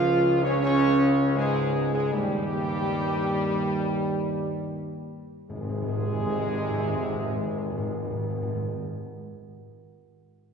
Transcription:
Already playing: C#2 F3 F4 F5
0.43 C#3 C#4 C#5
0.61 C#3 C#4 C#5
1.36 G#2 G#3 G#4
1.93 G#2 G#3 G#4
2.12 D#2 G2 D#3 G3 G4
5.49 G#1 G#2 C3 G#3 G#4
5.56 G#2
5.63 G#2
5.69 G#2
5.76 G#2
5.82 G#2
5.88 G#2
5.95 G#2
6.01 G#2
6.07 G#2
6.13 G#2
6.20 G#2
6.26 G#2
6.32 G#2
6.38 G#2
6.45 G#2
6.51 G#2
6.57 G#2
6.64 G#2
6.70 G#2
6.77 G#2
6.84 G#2
6.89 G#2
6.96 G#2
7.02 G#2
7.09 G#2
7.15 G#2
7.21 G#2
7.28 G#2
7.34 G#2
7.41 G#2
7.47 G#2
7.53 G#2
7.59 G#2
7.65 G#2
7.71 G#2
7.78 G#2
7.84 G#2
7.90 G#2
7.98 G#2
8.05 G#2
8.11 G#2
8.17 G#2
8.23 G#2
8.30 G#2
8.36 G#2
8.42 G#2
8.49 G#2
8.55 G#2

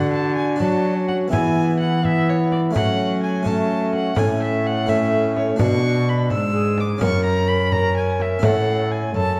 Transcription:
Already playing: D3 D4 F#4 F#5
0.13 A5
0.36 G#5
0.56 F#3 D4 F#4
0.60 F#3 D4 A5, frame drum
0.96 C#4
1.08 F#5, frame drum
1.28 E3 B3 E4 G#4
1.32 G#5, frame drum
1.80 F#5
2.03 B3 E4 E5, frame drum
2.30 C#5
2.52 D5, frame drum
2.71 F#3 A3 C#4 C#5
2.76 F#5, frame drum
3.23 G#5
3.43 A3 C#4 C#5, frame drum
3.47 A5
3.93 F#5, frame drum
4.15 A2 A3 C#4 D4 C#5 G#5, frame drum
4.22 C#4
4.43 E5
4.67 F#5
4.86 A3 C#4 C#5 E5, frame drum
5.37 C#5, frame drum
5.56 B2 D4 F#4 B4, frame drum
5.61 C#6
6.09 B5
6.30 G#2 E6, frame drum
6.53 G#4
6.78 D6, frame drum
6.98 F#2 C#4 F#4 A#4, frame drum
7.03 C#6
7.25 A#5
7.48 B5
7.72 C#4 A#4 A#5, frame drum
7.97 G#5
8.20 E5, frame drum
8.39 A2 C#4 E4 A4, frame drum
8.43 C#4 A4 F#5
8.92 G#5
9.14 F#2 C#4 A4 A5, frame drum

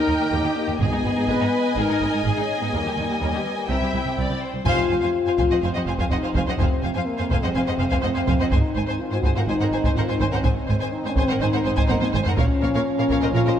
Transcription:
Already playing: D#4 A#4 D#5 G5
0.07 D#2 D#4
0.20 D#2 G4
0.32 D#2 G4 A#4
0.44 D#2 G4
0.57 A#3
0.68 D#2 G4
0.80 G#1 G#2 B3 G#4 D#5 G#5, taiko
0.92 G#2 D#4
1.04 G#1 G#2 B3
1.16 G#2 D#4
1.28 G#1 G#2 G#4 B4
1.40 G#2 D#4
1.76 G#1 G#2 D#4 G#4 A#4
1.89 G#2 D#4
2.00 G#1 G#2 B3
2.13 G#2 D#4
2.24 G#1 G#2 D#4 G#4
2.37 G#2 D#4
2.42 C#4
2.57 G#2 B3
2.62 D#4
2.73 D#2 G3 A#3 A#4
2.85 D#2 G4
2.97 D#2 D#4
3.09 D#2 G4
3.21 D#2 C#4 A#4
3.33 D#2 G4
3.38 B3
3.54 A#3
3.69 C2 C4 E4 A#4 E5 G5
3.81 C2 G4
3.94 C2 E4
4.06 C2 G4
4.18 C2 D5
4.30 C2
4.42 C5
4.54 C2
4.64 F1 F2 C3 C4 F4 C5 F5 G#5, taiko
4.90 F1 F2 C5 F5 G#5
5.01 F2 C5 F5 G#5
5.26 F2 C5 F5 G#5
5.38 F1 F2 C5 F5 G#5, taiko
5.50 F2 C5 D#5 F#5
5.62 F1 F2 C4 C5 F5 G#5
5.74 F2 C5 D#5 F#5
5.86 F1 F2 C5 F5 G#5
5.98 F2 C5 F5 G#5, taiko
6.10 F1 F2 D#4 C5 D#5 F#5
6.23 F2 C5 F5 G#5
6.34 F1 F2 C5 F5 G#5, taiko
6.47 F2 C#4 C5 D#5 F#5
6.58 F1 F2 C4 C5 F5 G#5, taiko
6.83 F1 F2 C5 F5 G#5
6.94 F2 C5 F5 G#5
7.05 A#3
7.18 F2 C5 F5 G#5
7.31 F1 F2 C5 F5 G#5, taiko
7.42 F2 G#3 C5 D#5 F#5
7.54 F1 F2 C4 C5 F5 G#5
7.67 F2 C5 D#5 F#5
7.79 F1 F2 C5 F5 G#5
7.90 F2 C5 F5 G#5, taiko
8.02 F1 F2 C4 C5 D#5 F#5
8.15 F2 C5 F5 G#5
8.27 F1 F2 C5 F5 G#5, taiko
8.40 F2 C5 D#5 F#5
8.51 G#1 G#2 D#3 C4 D#4 C5 G#5, taiko
8.75 G#1 G#2 C5 G#5
8.87 G#2 C5 G#5
9.00 F4
9.11 G#2 C5 G#5
9.17 F#4
9.23 G#1 G#2 C5 G#5, taiko
9.32 G#2 F4 C5
9.37 A#4 F#5
9.47 G#1 G#2 D#4 C5 G#5
9.60 G#2 A#4 C5 F#5
9.72 G#1 G#2 C5 G#5
9.84 G#2 C5 G#5, taiko
9.95 G#1 G#2 F4 A#4 C5 F#5
10.08 G#2 C5 G#5
10.13 D#4
10.20 G#1 G#2 C5 G#5, taiko
10.28 C#4 A#4
10.32 G#2 C5 F#5
10.44 G#1 G#2 C4 C5 G#5, taiko
10.68 G#1 G#2 C5 G#5
10.80 G#2 C5 G#5
10.92 D#4
11.04 G#2 C5 G#5
11.10 C#4
11.16 G#1 G#2 C5 G#5, taiko
11.26 G#2 C4 C5
11.30 A#4 F#5
11.40 G#1 G#2 D#4 C5 G#5
11.53 G#2 A#4 C5 F#5
11.65 G#1 G#2 C5 G#5
11.77 G#2 C5 G#5, taiko
11.88 G#1 G#2 A#4 C5 F#5, taiko high
12.00 G#2 C5 G#5, taiko high
12.13 G#1 G#2 C5 G#5, taiko low-mid
12.25 G#2 A#4 C5 F#5, taiko low
12.37 A#1 A#2 F3 C#4 A#4 C#5 F5, taiko
12.62 A#1 A#2 A#4 C#5 F5
12.74 A#2 A#4 C#5 F5
12.99 A#2 A#4 C#5 F5
13.10 A#1 A#2 A#4 C#5 F5, taiko
13.22 A#2 A#4 C5 D#5
13.34 A#1 A#2 F4 A#4 C#5 F5
13.46 A#2 A#4 C5 D#5

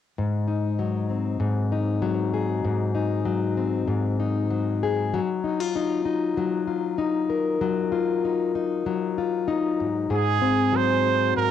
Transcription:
0.18 G#2
0.48 D#4
0.79 F#3
1.10 C4
1.40 G#2
1.72 D#4
2.02 F#3
2.34 G#4
2.65 G#2
2.95 D#4
3.25 F#3
3.57 C4
3.88 G#2
4.20 D#4
4.50 F#3
4.83 G#4
5.14 F#3
5.44 D#4
5.60 F4
5.76 D#4
6.05 D#4
6.37 F#3
6.67 F4
6.98 D#4
7.30 A#4
7.61 F#3
7.92 F4
8.25 D#4
8.55 D#4
8.86 F#3
9.18 F4
9.48 D#4
9.80 G#2
10.10 G#2 G#4
10.14 G#4
10.42 C4
10.73 F#3 C5
11.05 F#4
11.37 G#2 A#4

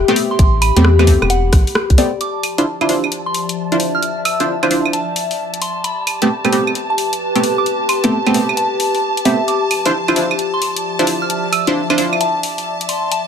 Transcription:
Already playing: G4
0.08 A3 B3 C4 G4 B5, closed hi-hat
0.16 open hi-hat
0.31 C6
0.39 A1, kick, closed hi-hat
0.62 B5, open hi-hat, claves
0.76 E2 A3 B3 C4 G4, closed hi-hat
0.84 cross-stick
0.99 A3 B3 C4 G4, cross-stick, closed hi-hat, claves
1.07 A3 B3 C4 G4, kick, open hi-hat
1.22 E1, cross-stick, claves
1.30 F#5, closed hi-hat
1.53 A1, kick, cross-stick, open hi-hat
1.67 open hi-hat
1.75 cross-stick
1.90 C2, kick, closed hi-hat
1.98 A3 B3 C4 G4 D5, open hi-hat
2.21 F3 A5 D6, closed hi-hat
2.36 D5
2.43 open hi-hat, claves
2.58 D4 E4 F4 C5, closed hi-hat
2.81 D4 E4 F4 C5, closed hi-hat, claves
2.89 D4 E4 F4 C5 E5, open hi-hat
3.04 claves
3.12 closed hi-hat
3.26 C6
3.34 open hi-hat
3.49 closed hi-hat
3.72 D4 E4 F4 C5, closed hi-hat
3.80 open hi-hat
3.86 D6
3.95 F6
4.03 closed hi-hat
4.25 E6, open hi-hat, claves
4.40 D4 E4 F4 C5, closed hi-hat
4.63 D4 E4 F4 C5, closed hi-hat, claves
4.71 D4 E4 F4 C5, open hi-hat
4.85 claves
4.93 A5, closed hi-hat
5.16 open hi-hat
5.31 open hi-hat
5.54 closed hi-hat
5.62 C6, open hi-hat
5.84 G4 B5, closed hi-hat
6.07 open hi-hat, claves
6.22 A3 B3 C4 G4, closed hi-hat
6.33 B4
6.45 A3 B3 C4 G4, closed hi-hat, claves
6.52 A3 B3 C4 G4, open hi-hat
6.67 claves
6.75 closed hi-hat
6.81 A5
6.90 A5
6.98 open hi-hat
7.13 closed hi-hat
7.36 A3 B3 C4 G4, closed hi-hat
7.43 open hi-hat
7.58 D6
7.66 closed hi-hat
7.89 C6, open hi-hat, claves
8.04 A3 B3 C4 G4, closed hi-hat
8.27 A3 B3 C4 G4, closed hi-hat, claves
8.34 A3 B3 C4 G4, open hi-hat
8.49 claves
8.57 A5, closed hi-hat
8.80 open hi-hat
8.95 open hi-hat
9.17 closed hi-hat
9.25 A3 B3 C4 G4 E5, open hi-hat
9.48 F3 D6, closed hi-hat
9.71 open hi-hat, claves
9.86 D4 E4 F4 C5, closed hi-hat
9.91 D5
10.05 D4 E4 F4 C5 E5, closed hi-hat, claves
10.16 D4 E4 F4 C5, open hi-hat
10.31 claves
10.39 closed hi-hat
10.54 C6
10.62 open hi-hat
10.76 closed hi-hat
10.99 D4 E4 F4 C5, closed hi-hat
11.07 open hi-hat
11.22 F6
11.30 closed hi-hat
11.52 E6, open hi-hat, claves
11.67 D4 E4 F4 C5, closed hi-hat
11.90 D4 E4 F4 C5, closed hi-hat, claves
11.98 D4 E4 F4 C5, open hi-hat
12.13 claves
12.21 A5, closed hi-hat
12.43 open hi-hat
12.58 open hi-hat
12.81 closed hi-hat
12.89 C6, open hi-hat
13.12 G4 A5, closed hi-hat

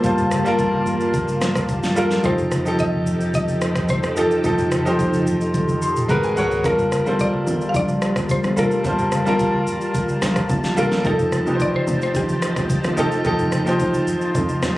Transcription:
Already playing: G3 A#3 F4 A4 A#4 C5 A5
0.03 G1 G3 F4 C5 A5, kick, low conga, shaker
0.18 mid tom, high conga, shaker
0.31 cross-stick, high conga, shaker
0.45 G3 F4 A#4 A5, shaker
0.59 kick, shaker
0.73 high conga
0.86 low conga, shaker
1.01 shaker
1.14 kick, shaker
1.27 high conga, shaker
1.41 cross-stick, snare, shaker
1.55 kick, cross-stick, shaker
1.69 kick, high conga, shaker
1.83 snare, shaker
1.95 G3 F4 A4 A#4, low conga, shaker
2.11 snare, shaker
2.23 F1 F3 D#4 G4 A4 C5, kick, low conga, shaker
2.38 mid tom, high conga, shaker
2.52 cross-stick, high conga, shaker
2.65 F3 D#4 G4 A4, shaker
2.79 D#5, kick, shaker
2.93 high conga
3.06 low conga, shaker
3.21 shaker
3.34 D#5, kick, shaker
3.48 high conga, shaker
3.61 cross-stick, shaker
3.75 kick, cross-stick, shaker
3.89 C5, kick, high conga, shaker
4.03 cross-stick, shaker
4.16 F3 D#4 G4 A4, low conga, shaker
4.31 shaker
4.43 F1 F3 D#4 G4 A4, kick, low conga, shaker
4.58 mid tom, high conga, shaker
4.72 cross-stick, high conga, shaker
4.85 F3 D#4 G4 C5, shaker
4.99 kick, shaker
5.13 high conga, shaker
5.26 low conga, shaker
5.41 shaker
5.54 kick, high tom, shaker
5.68 high tom, high conga, shaker
5.82 C6, shaker
5.96 mid tom, shaker
6.08 G#1 G#3 F#4 A#4 B4 A#5, kick, mid tom, high conga, shaker
6.23 G#5, shaker
6.36 G#3 F#4 A#4 C#5 F#5, floor tom, low conga, shaker
6.51 floor tom, shaker
6.64 G1 G3 F4 A#4 A5, kick, low conga, shaker
6.79 mid tom, high conga, shaker
6.92 cross-stick, high conga, shaker
7.05 G1 G3 F4 A4 C5, shaker
7.19 D5, kick, shaker
7.34 high conga
7.47 G1, low conga, shaker
7.61 shaker
7.69 F5
7.74 A#1 D5, kick, shaker
7.88 high conga, shaker
8.02 cross-stick, shaker
8.16 G1, kick, cross-stick, shaker
8.29 C5, kick, high conga, shaker
8.44 G1, cross-stick, shaker
8.56 F1 G3 F4 A4 A#4, low conga, shaker
8.71 shaker
8.84 G1 G3 F4 C5 A5, kick, low conga, shaker
8.99 mid tom, high conga, shaker
9.12 cross-stick, high conga, shaker
9.25 G1 G3 F4 A#4 A5, shaker
9.39 kick, shaker
9.54 high conga
9.67 low conga, shaker
9.81 shaker
9.94 kick, shaker
10.08 high conga, shaker
10.22 A#1, cross-stick, snare, shaker
10.36 kick, cross-stick, shaker
10.49 G1, kick, high conga, shaker
10.64 snare, shaker
10.76 F1 G3 F4 A4 A#4, low conga, shaker
10.91 G1, snare, shaker
11.04 F1 F3 D#4 G4 A4, kick, low conga, shaker
11.19 mid tom, high conga, shaker
11.32 cross-stick, high conga, shaker
11.46 F1 F3 D#4 G4 B4, shaker
11.55 C5
11.60 D5, kick, shaker
11.74 C5, high conga
11.87 F1, low conga, shaker
12.02 C5, shaker
12.15 A1 G4, kick, shaker
12.28 high conga, shaker
12.42 cross-stick, shaker
12.56 G1, kick, cross-stick, shaker
12.70 kick, high conga, shaker
12.84 G1, cross-stick, shaker
12.97 F1 F3 D#4 G4 A4, low conga, shaker
13.12 shaker
13.24 F1 F3 D#4 F4 G4 A4, kick, low conga, shaker
13.39 mid tom, high conga, shaker
13.52 cross-stick, high conga, shaker
13.66 F1 F3 D#4 G4 C5, shaker
13.80 kick, shaker
13.94 high conga, shaker
14.07 low conga, shaker
14.21 shaker
14.35 F2, kick, shaker
14.48 high conga, shaker
14.62 D#2, cross-stick, snare, shaker

